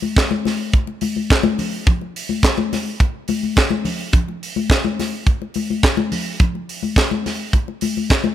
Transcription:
0.02 high conga
0.16 kick, snare, clap, closed hi-hat
0.31 muted conga, high conga
0.45 snare, open hi-hat, high conga
0.73 kick, closed hi-hat
0.87 muted conga
1.01 open hi-hat, high conga
1.16 high conga
1.30 kick, snare, clap, closed hi-hat
1.43 muted conga, high conga
1.59 open hi-hat, low conga
1.87 kick, closed hi-hat, muted conga, low conga
2.01 muted conga
2.16 open hi-hat
2.29 high conga
2.43 kick, snare, clap, closed hi-hat, muted conga
2.58 muted conga, high conga
2.73 snare, open hi-hat, high conga
3.00 kick, closed hi-hat, muted conga
3.28 open hi-hat, high conga
3.43 high conga
3.56 kick, snare, clap, closed hi-hat, muted conga
3.70 high conga
3.85 open hi-hat, low conga
4.13 kick, closed hi-hat, muted conga, low conga
4.28 muted conga
4.43 open hi-hat
4.56 high conga
4.70 kick, snare, clap, closed hi-hat, muted conga
4.85 muted conga, high conga
4.99 snare, open hi-hat, high conga
5.27 kick, closed hi-hat, muted conga
5.42 muted conga
5.54 open hi-hat, high conga
5.70 high conga
5.83 kick, snare, clap, closed hi-hat, muted conga
5.97 muted conga, high conga
6.12 open hi-hat, low conga
6.40 kick, closed hi-hat, muted conga, low conga
6.55 muted conga
6.69 open hi-hat
6.83 high conga
6.96 kick, snare, clap, closed hi-hat, muted conga
7.11 muted conga, high conga
7.26 snare, open hi-hat, high conga
7.53 kick, closed hi-hat, muted conga
7.68 muted conga
7.81 open hi-hat, high conga
7.97 high conga
8.09 kick, snare, clap, closed hi-hat, muted conga
8.24 muted conga, high conga

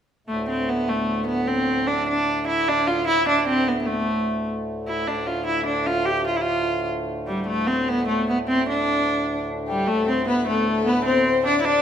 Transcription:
0.27 D2 A2 A3
0.49 C4
0.69 B3
0.88 A3
1.27 B3
1.47 C4
1.87 D4
2.09 D4
2.48 E4
2.68 D4
2.87 F4
3.07 E4
3.28 D4
3.48 C4
3.67 B3
3.81 B3
3.87 A3
4.88 E4
5.06 D2 A2 D4
5.27 F4
5.46 E4
5.66 D4
5.86 F4
6.06 G4
6.27 F4
6.36 E4
6.41 F4
7.27 G3
7.47 A3
7.67 C4
7.88 B3
8.08 A3
8.29 B3
8.48 C4
8.69 D4
9.67 G3 G4
9.87 D2 A2 A3 A4
10.08 C4 C5
10.27 B3 B4
10.47 A3 A4
10.68 A4
10.85 B3 B4
11.05 C4 C5
11.26 C5
11.46 D4 D5
11.61 E4
11.65 D4 D5

